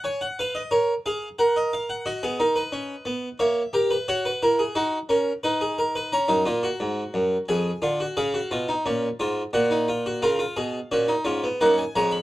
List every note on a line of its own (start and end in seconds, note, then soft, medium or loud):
0.04 0.25 C#5 medium
0.04 0.21 G#5 medium
0.21 0.38 F#5 medium
0.39 0.60 B4 medium
0.39 0.55 F5 medium
0.55 0.71 D#5 medium
0.71 0.92 A#4 medium
0.71 0.92 C#5 medium
1.06 1.27 G#4 medium
1.06 1.27 F5 medium
1.39 2.04 A#4 medium
1.39 1.55 F#5 medium
1.56 1.72 D#5 medium
1.73 1.89 F5 medium
1.89 2.06 F#5 medium
2.06 2.22 F#4 medium
2.06 3.37 D#5 medium
2.23 2.40 B3 medium
2.23 2.39 G#4 medium
2.40 2.61 D#4 medium
2.40 2.56 A#4 medium
2.56 3.38 B4 medium
2.72 2.94 C#4 medium
3.05 3.27 B3 medium
3.39 3.61 A#3 medium
3.39 3.61 C#5 medium
3.39 4.06 E5 medium
3.73 3.95 G4 medium
3.73 3.91 A#4 medium
3.91 4.08 B4 medium
4.08 4.30 F#4 medium
4.08 4.25 C#5 medium
4.08 6.08 F#5 medium
4.25 4.42 B4 medium
4.43 4.64 E4 medium
4.43 4.59 A#4 medium
4.59 4.76 G#4 medium
4.75 4.97 D#4 medium
4.75 4.97 F#4 medium
5.09 5.31 C#4 medium
5.09 5.31 A#4 medium
5.43 6.10 D#4 medium
5.43 5.60 B4 medium
5.61 5.78 G#4 medium
5.78 5.95 A#4 medium
5.95 6.12 B4 medium
6.12 6.29 C#4 medium
6.12 7.45 A#5 medium
6.28 6.45 F#2 medium
6.28 6.45 D#4 medium
6.46 6.67 A#2 medium
6.46 6.62 F4 medium
6.63 7.46 F#4 medium
6.80 7.01 G#2 medium
7.14 7.35 F#2 medium
7.48 7.70 F2 medium
7.48 7.70 G#4 medium
7.48 8.15 G#5 medium
7.82 8.04 D3 medium
7.82 7.99 F4 medium
8.00 8.17 F#4 medium
8.17 8.38 C#3 medium
8.17 8.33 G#4 medium
8.17 9.50 F5 medium
8.34 8.51 F#4 medium
8.51 8.73 B2 medium
8.51 8.68 F4 medium
8.69 8.85 D#4 medium
8.86 9.07 A#2 medium
8.86 9.07 C#4 medium
9.20 9.41 G#2 medium
9.20 9.41 F4 medium
9.53 10.20 A#2 medium
9.53 9.70 F#4 medium
9.53 10.20 F#5 medium
9.71 9.87 D#4 medium
9.88 10.05 F4 medium
10.06 10.22 F#4 medium
10.22 10.44 C#3 medium
10.22 10.38 F4 medium
10.22 10.39 A#4 medium
10.22 11.55 F5 medium
10.39 10.56 F4 medium
10.56 10.78 B2 medium
10.56 10.78 G#4 medium
10.91 11.13 A#2 medium
10.91 11.08 C#4 medium
10.91 11.13 F#4 medium
11.08 11.25 D#4 medium
11.25 11.46 G#2 medium
11.25 11.42 C#4 medium
11.25 11.46 F4 medium
11.44 11.60 B3 medium
11.61 11.82 F#2 medium
11.61 11.82 A#3 medium
11.61 11.82 D#4 medium
11.61 11.77 F#5 medium
11.78 11.94 G#5 medium
11.96 12.16 F2 medium
11.96 12.16 G#3 medium
11.96 12.16 C#5 medium
11.96 12.11 A#5 medium
12.11 12.22 B5 medium